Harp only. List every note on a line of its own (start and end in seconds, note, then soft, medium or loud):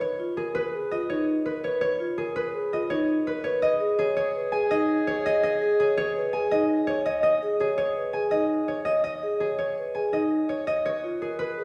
0.00 0.36 G#4 medium
0.00 0.54 B4 medium
0.00 1.08 C#5 medium
0.00 0.90 D#5 medium
0.37 2.17 G#4 medium
0.55 1.44 B4 loud
0.91 2.72 D#5 medium
1.10 1.63 C#5 medium
1.46 2.35 B4 medium
1.64 1.80 C#5 medium
1.81 2.89 C#5 loud
2.18 3.98 G#4 medium
2.36 3.26 B4 loud
2.73 3.61 D#5 medium
2.90 3.43 C#5 loud
3.27 7.17 B4 medium
3.44 3.64 C#5 loud
3.62 4.69 D#5 loud
3.99 5.79 G#4 medium
4.17 5.06 C#5 loud
4.52 6.32 G#5 medium
4.71 5.25 D#5 loud
5.07 5.96 C#5 loud
5.26 5.42 D#5 loud
5.43 6.50 D#5 loud
5.80 7.59 G#4 medium
5.97 6.86 C#5 loud
6.33 8.12 G#5 medium
6.51 7.04 D#5 loud
6.87 7.77 C#5 loud
7.06 7.22 D#5 loud
7.23 8.30 D#5 loud
7.60 9.39 G#4 medium
7.78 8.67 C#5 loud
8.13 9.93 G#5 medium
8.31 8.84 D#5 loud
8.68 9.57 C#5 medium
8.85 9.03 D#5 medium
9.04 10.12 D#5 loud
9.40 11.21 G#4 medium
9.59 10.48 C#5 medium
9.95 11.64 G#5 medium
10.13 10.66 D#5 medium
10.49 10.84 C#5 medium
10.67 11.64 D#5 medium
10.86 11.64 C#5 loud
11.22 11.64 G#4 medium
11.39 11.64 B4 loud